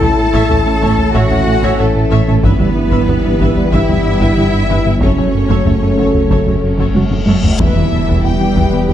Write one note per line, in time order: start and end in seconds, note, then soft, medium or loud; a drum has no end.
0.00 2.45 A1 medium
0.00 0.09 A1 medium
0.00 4.98 E3 medium
0.00 2.40 A3 medium
0.00 2.44 A3 medium
0.00 0.11 A3 medium
0.00 2.40 C#4 medium
0.00 2.44 C#4 medium
0.00 2.39 E4 medium
0.00 2.41 E4 medium
0.00 0.11 E4 medium
0.00 1.12 A4 loud
0.00 0.08 C#5 medium
0.00 2.42 E5 medium
0.00 0.08 E5 medium
0.00 1.12 A5 loud
0.00 1.15 A5 loud
0.00 taiko low medium
0.18 0.27 A2 medium
0.33 0.41 A1 loud
0.33 0.44 A2 loud
0.33 0.43 A3 loud
0.33 0.49 C#5 medium
0.33 0.49 E5 loud
0.33 taiko medium
0.50 0.57 A1 medium
0.50 0.60 A2 medium
0.50 0.59 C#4 medium
0.50 0.56 C#5 medium
0.50 0.56 E5 medium
0.50 taiko low medium
0.66 0.73 A1 medium
0.66 0.76 A2 medium
0.66 0.76 C#4 medium
0.66 0.72 C#5 medium
0.66 0.72 E5 medium
0.81 0.90 A1 loud
0.81 0.92 A2 medium
0.81 0.92 A3 loud
0.81 0.97 C#5 loud
0.81 0.97 E5 loud
0.81 taiko medium
0.98 1.09 A3 medium
0.98 taiko low medium
1.14 1.22 A1 loud
1.14 1.25 A2 loud
1.14 1.24 A3 loud
1.14 1.80 F#4 loud
1.14 1.30 C#5 loud
1.14 1.29 E5 loud
1.14 1.79 F#5 loud
1.14 taiko medium
1.30 1.37 A1 medium
1.30 1.41 A2 medium
1.30 1.40 C#4 medium
1.30 1.38 C#5 medium
1.30 1.38 E5 medium
1.30 taiko low medium
1.47 1.57 A2 medium
1.63 1.70 A1 medium
1.63 1.73 A2 loud
1.63 1.73 A3 loud
1.63 1.78 C#5 loud
1.63 1.78 E5 loud
1.63 taiko medium
1.78 1.86 A1 medium
1.78 1.89 A2 medium
1.78 2.44 A3 loud
1.78 2.42 A4 medium
1.78 2.44 A4 medium
1.78 1.89 A4 medium
1.78 1.86 C#5 medium
1.78 1.86 E5 medium
1.96 2.05 A2 medium
2.11 2.18 A1 medium
2.11 2.21 A2 medium
2.11 2.21 A3 loud
2.11 2.26 C#5 medium
2.11 2.26 E5 loud
2.28 2.35 A1 medium
2.28 2.37 A2 medium
2.28 2.38 C#4 medium
2.28 2.34 C#5 medium
2.28 2.34 E5 medium
2.43 5.04 G1 medium
2.43 2.51 G1 loud
2.43 2.54 G2 loud
2.43 2.54 E3 loud
2.43 5.01 G3 medium
2.43 4.98 G3 medium
2.43 5.01 B3 medium
2.43 4.97 B3 loud
2.43 3.73 B3 loud
2.43 4.97 E4 medium
2.43 4.98 G4 loud
2.43 3.70 B4 loud
2.43 2.58 B4 medium
2.43 3.70 B4 loud
2.43 4.97 E5 medium
2.43 2.58 E5 medium
2.43 taiko loud
2.59 2.67 G1 medium
2.59 2.70 G3 medium
2.59 2.70 B3 medium
2.59 2.66 B4 medium
2.59 2.66 E5 medium
2.59 taiko low medium
2.76 2.86 G2 medium
2.91 2.99 G1 medium
2.91 3.02 G2 medium
2.91 3.02 E3 loud
2.91 3.07 B4 medium
2.91 3.07 E5 medium
2.91 taiko medium
3.08 3.15 G1 medium
3.08 3.18 G2 medium
3.08 3.18 G3 medium
3.08 3.14 B4 medium
3.08 3.14 E5 medium
3.08 taiko low medium
3.24 3.31 G1 medium
3.24 3.35 G2 medium
3.24 3.34 G3 medium
3.24 3.31 B4 medium
3.24 3.31 E5 medium
3.40 3.47 G1 medium
3.40 3.50 G2 loud
3.40 3.51 E3 loud
3.40 3.55 B4 medium
3.40 3.55 E5 loud
3.40 taiko medium
3.57 3.67 G3 medium
3.57 taiko low medium
3.72 3.79 G1 medium
3.72 3.83 G2 loud
3.72 3.83 E3 loud
3.72 4.99 E4 loud
3.72 3.88 B4 medium
3.72 3.87 E5 loud
3.72 5.02 E5 loud
3.72 5.02 E5 medium
3.72 taiko medium
3.88 3.96 G1 medium
3.88 3.99 G2 medium
3.88 3.99 G3 medium
3.88 3.95 B4 medium
3.88 3.95 E5 medium
3.88 taiko low medium
4.06 4.15 G2 medium
4.20 4.28 G1 medium
4.20 4.31 G2 loud
4.20 4.32 E3 loud
4.20 4.36 B4 medium
4.20 4.36 E5 medium
4.20 taiko medium
4.37 4.44 G1 medium
4.37 4.48 G2 medium
4.37 4.48 E4 medium
4.37 4.44 B4 medium
4.37 4.44 E5 medium
4.54 4.63 G2 medium
4.69 4.76 G1 medium
4.69 4.79 G2 loud
4.69 4.79 E3 loud
4.69 4.84 B4 medium
4.69 4.84 E5 medium
4.85 4.92 G1 medium
4.85 4.95 G2 medium
4.85 4.96 G3 medium
4.85 4.92 B4 medium
4.85 4.92 E5 medium
5.01 5.08 F#1 medium
5.01 7.60 F#1 medium
5.01 5.12 F#2 loud
5.01 7.24 C#3 medium
5.01 7.24 F#3 medium
5.01 7.60 F#3 medium
5.01 5.11 F#3 loud
5.01 7.60 A3 medium
5.01 7.24 A3 medium
5.01 6.92 C#4 medium
5.01 7.60 A4 medium
5.01 7.24 A4 medium
5.01 5.17 A4 medium
5.01 7.59 C#5 medium
5.01 5.17 C#5 medium
5.01 6.92 C#5 medium
5.01 taiko loud
5.01 reverse cymbal medium
5.17 5.24 F#1 medium
5.17 5.28 F#3 medium
5.17 5.28 C#4 medium
5.17 5.25 A4 soft
5.17 5.24 C#5 medium
5.17 taiko low medium
5.34 5.44 F#2 medium
5.50 5.57 F#1 medium
5.50 5.59 F#2 loud
5.50 5.60 F#3 loud
5.50 5.65 A4 medium
5.50 5.65 C#5 medium
5.50 taiko medium
5.66 5.73 F#1 medium
5.66 5.76 F#2 medium
5.66 5.76 A3 medium
5.66 5.73 A4 medium
5.66 5.73 C#5 medium
5.66 taiko low medium
5.82 5.89 F#1 medium
5.82 5.92 F#2 medium
5.82 5.92 A3 medium
5.82 5.89 A4 soft
5.82 5.89 C#5 soft
5.98 6.05 F#1 medium
5.98 6.08 F#2 medium
5.98 6.09 F#3 loud
5.98 6.14 A4 medium
5.98 6.13 C#5 medium
5.98 taiko medium
6.14 6.24 F#3 medium
6.14 taiko low medium
6.30 6.37 F#1 medium
6.30 6.40 F#2 loud
6.30 6.41 F#3 loud
6.30 6.46 A4 medium
6.30 6.46 C#5 medium
6.30 taiko medium
6.46 6.54 F#1 medium
6.46 6.56 F#2 medium
6.46 6.57 A3 medium
6.46 6.54 A4 medium
6.46 6.54 C#5 medium
6.46 taiko low medium
6.63 6.73 F#2 medium
6.78 6.86 F#1 medium
6.78 6.89 F#2 medium
6.78 6.89 F#3 loud
6.78 6.94 A4 medium
6.78 6.94 C#5 medium
6.78 taiko medium
6.95 7.02 F#1 medium
6.95 7.05 F#2 medium
6.95 7.06 F#4 medium
6.95 7.02 A4 medium
6.95 7.02 C#5 medium
6.95 taiko high medium
7.11 7.21 F#2 medium
7.11 taiko low-mid medium
7.27 7.34 F#1 medium
7.27 7.37 F#2 medium
7.27 7.38 F#3 loud
7.27 7.43 A4 medium
7.27 7.43 C#5 medium
7.27 taiko high loud
7.43 7.51 F#1 soft
7.43 7.53 F#2 medium
7.43 7.54 A3 medium
7.43 7.51 A4 soft
7.43 7.51 C#5 medium
7.43 taiko low loud
7.59 8.93 E1 medium
7.59 7.69 E2 loud
7.59 7.67 E2 medium
7.59 8.93 E3 medium
7.59 8.21 E3 medium
7.59 7.70 E3 loud
7.59 8.93 G3 medium
7.59 8.93 B3 medium
7.59 8.21 E4 medium
7.59 8.93 G4 medium
7.59 7.90 B4 medium
7.59 8.93 E5 medium
7.59 8.21 E5 loud
7.59 taiko loud
7.59 impact medium
7.75 7.85 E2 medium
7.75 7.84 E2 medium
7.75 7.86 E4 medium
7.92 8.02 E2 medium
7.92 8.00 E2 medium
7.92 8.02 E4 medium
7.92 8.24 A4 medium
8.08 8.18 E2 loud
8.08 8.16 E2 medium
8.08 8.18 E3 loud
8.08 taiko medium
8.23 8.32 E2 medium
8.23 8.33 E3 medium
8.23 8.88 G3 medium
8.23 8.34 B3 medium
8.23 8.87 G4 medium
8.23 8.57 G4 medium
8.23 8.88 G5 loud
8.40 8.48 E2 medium
8.40 8.50 E3 medium
8.40 8.51 B3 medium
8.56 8.66 E2 loud
8.56 8.63 E2 medium
8.56 8.67 E3 loud
8.56 8.93 B4 medium
8.56 taiko medium
8.72 8.82 E2 medium
8.72 8.80 E2 medium
8.72 8.83 G3 medium
8.88 8.93 E2 loud
8.88 8.93 E2 medium
8.88 8.93 E3 loud
8.88 8.93 G3 loud
8.88 8.93 G4 loud
8.88 8.93 G5 loud